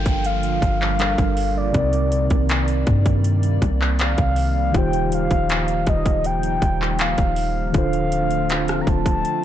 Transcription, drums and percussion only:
0.06 kick loud
0.06 closed hi-hat medium
0.24 closed hi-hat medium
0.43 closed hi-hat soft
0.62 kick medium
0.62 closed hi-hat medium
0.82 clap medium
0.99 clap loud
0.99 closed hi-hat medium
1.18 kick medium
1.18 closed hi-hat soft
1.37 open hi-hat medium
1.74 kick loud
1.74 closed hi-hat medium
1.93 closed hi-hat soft
2.12 closed hi-hat medium
2.30 kick medium
2.30 closed hi-hat soft
2.49 clap loud
2.49 closed hi-hat medium
2.68 closed hi-hat soft
2.87 kick loud
2.87 closed hi-hat soft
3.06 kick loud
3.06 closed hi-hat medium
3.24 closed hi-hat medium
3.43 closed hi-hat medium
3.62 kick medium
3.62 closed hi-hat medium
3.82 clap medium
3.99 clap loud
3.99 closed hi-hat medium
4.18 kick medium
4.18 closed hi-hat soft
4.36 open hi-hat medium
4.74 kick loud
4.74 closed hi-hat medium
4.93 closed hi-hat soft
5.12 closed hi-hat medium
5.31 kick medium
5.31 closed hi-hat soft
5.49 clap loud
5.49 closed hi-hat medium
5.68 closed hi-hat soft
5.87 kick loud
5.87 closed hi-hat soft
6.06 kick loud
6.06 closed hi-hat medium
6.24 closed hi-hat medium
6.43 closed hi-hat medium
6.62 kick medium
6.62 closed hi-hat medium
6.82 clap medium
6.99 clap loud
6.99 closed hi-hat medium
7.18 kick medium
7.18 closed hi-hat soft
7.36 open hi-hat medium
7.74 kick loud
7.74 closed hi-hat medium
7.93 closed hi-hat soft
8.12 closed hi-hat medium
8.31 closed hi-hat soft
8.49 clap loud
8.49 closed hi-hat medium
8.68 cross-stick medium
8.68 closed hi-hat soft
8.87 kick loud
8.87 closed hi-hat soft
9.06 kick loud
9.06 closed hi-hat medium
9.25 closed hi-hat medium

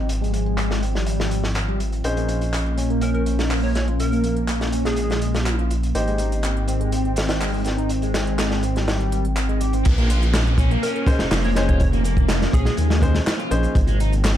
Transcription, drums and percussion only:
0.09 closed hi-hat soft
0.09 closed hi-hat medium
0.22 closed hi-hat soft
0.24 closed hi-hat soft
0.34 closed hi-hat medium
0.46 closed hi-hat soft
0.58 clap loud
0.58 closed hi-hat soft
0.58 closed hi-hat medium
0.71 snare soft
0.83 closed hi-hat medium
0.95 snare soft
0.95 closed hi-hat soft
1.06 closed hi-hat medium
1.06 closed hi-hat soft
1.20 snare soft
1.31 closed hi-hat medium
1.44 snare soft
1.44 closed hi-hat soft
1.55 clap loud
1.55 closed hi-hat medium
1.55 closed hi-hat soft
1.69 closed hi-hat soft
1.80 closed hi-hat medium
1.92 closed hi-hat soft
2.04 closed hi-hat medium
2.04 closed hi-hat soft
2.17 closed hi-hat soft
2.29 closed hi-hat medium
2.41 closed hi-hat soft
2.54 clap loud
2.54 closed hi-hat medium
2.54 closed hi-hat soft
2.66 closed hi-hat soft
2.78 closed hi-hat medium
2.90 closed hi-hat soft
3.01 closed hi-hat medium
3.01 closed hi-hat soft
3.15 closed hi-hat soft
3.26 closed hi-hat medium
3.39 snare soft
3.39 closed hi-hat soft
3.51 clap loud
3.51 closed hi-hat soft
3.51 open hi-hat medium
3.63 closed hi-hat soft
3.75 snare soft
3.75 closed hi-hat medium
3.88 closed hi-hat soft
4.00 closed hi-hat soft
4.00 closed hi-hat medium
4.12 closed hi-hat soft
4.24 closed hi-hat medium
4.37 closed hi-hat soft
4.48 clap medium
4.48 closed hi-hat soft
4.48 closed hi-hat medium
4.61 snare soft
4.61 closed hi-hat soft
4.72 closed hi-hat medium
4.85 snare soft
4.85 closed hi-hat soft
4.96 closed hi-hat medium
4.96 closed hi-hat soft
5.10 snare soft
5.10 closed hi-hat soft
5.22 closed hi-hat medium
5.34 snare soft
5.34 closed hi-hat soft
5.46 clap medium
5.46 closed hi-hat medium
5.46 closed hi-hat soft
5.59 closed hi-hat soft
5.70 closed hi-hat medium
5.83 closed hi-hat soft
5.95 closed hi-hat soft
5.95 closed hi-hat medium
6.07 closed hi-hat soft
6.18 closed hi-hat medium
6.32 closed hi-hat soft
6.43 clap medium
6.43 closed hi-hat medium
6.43 closed hi-hat soft
6.57 closed hi-hat soft
6.68 closed hi-hat medium
6.81 closed hi-hat soft
6.92 closed hi-hat medium
6.92 closed hi-hat soft
7.05 closed hi-hat soft
7.16 snare loud
7.16 closed hi-hat medium
7.29 snare loud
7.29 closed hi-hat medium
7.29 closed hi-hat soft
7.40 clap medium
7.40 closed hi-hat soft
7.40 open hi-hat medium
7.54 closed hi-hat soft
7.64 snare soft
7.64 closed hi-hat medium
7.78 closed hi-hat soft
7.89 closed hi-hat medium
7.89 closed hi-hat soft
8.02 closed hi-hat soft
8.14 snare medium
8.14 closed hi-hat medium
8.27 closed hi-hat soft
8.38 snare medium
8.38 clap medium
8.38 closed hi-hat medium
8.38 closed hi-hat soft
8.51 snare soft
8.51 closed hi-hat soft
8.63 closed hi-hat medium
8.76 snare soft
8.76 closed hi-hat soft
8.88 snare medium
8.88 closed hi-hat medium
8.88 closed hi-hat soft
9.00 closed hi-hat soft
9.12 closed hi-hat medium
9.25 closed hi-hat soft
9.37 clap medium
9.37 closed hi-hat medium
9.37 closed hi-hat soft
9.49 closed hi-hat soft
9.61 closed hi-hat medium
9.73 closed hi-hat soft
9.85 kick loud
9.85 closed hi-hat medium
9.85 closed hi-hat soft
9.85 crash medium
9.98 closed hi-hat soft
10.10 closed hi-hat medium
10.22 closed hi-hat soft
10.34 snare loud
10.34 clap loud
10.34 closed hi-hat medium
10.34 closed hi-hat soft
10.47 closed hi-hat soft
10.58 kick loud
10.58 closed hi-hat medium
10.71 closed hi-hat soft
10.83 closed hi-hat medium
10.83 closed hi-hat soft
10.96 closed hi-hat soft
11.07 kick loud
11.07 closed hi-hat medium
11.19 snare soft
11.19 closed hi-hat soft
11.31 snare loud
11.31 clap loud
11.31 closed hi-hat soft
11.31 open hi-hat medium
11.44 closed hi-hat soft
11.55 snare soft
11.55 closed hi-hat medium
11.69 kick loud
11.69 closed hi-hat soft
11.80 kick loud
11.80 closed hi-hat medium
11.80 closed hi-hat soft
11.93 closed hi-hat soft
12.04 closed hi-hat medium
12.17 kick medium
12.17 closed hi-hat soft
12.29 snare loud
12.29 clap loud
12.29 closed hi-hat medium
12.29 closed hi-hat soft
12.42 snare soft
12.42 closed hi-hat soft
12.53 kick loud
12.53 closed hi-hat medium
12.65 snare soft
12.65 closed hi-hat soft
12.77 closed hi-hat loud
12.77 closed hi-hat soft
12.90 snare medium
12.90 closed hi-hat soft
13.02 kick loud
13.02 closed hi-hat medium
13.15 snare medium
13.15 closed hi-hat soft
13.26 snare loud
13.26 clap loud
13.26 closed hi-hat medium
13.26 closed hi-hat soft
13.40 closed hi-hat soft
13.51 closed hi-hat medium
13.63 closed hi-hat soft
13.75 kick loud
13.75 closed hi-hat soft
13.75 closed hi-hat medium
13.87 closed hi-hat soft
14.00 closed hi-hat medium
14.12 closed hi-hat soft
14.24 snare loud
14.24 clap loud
14.24 closed hi-hat medium
14.24 closed hi-hat soft

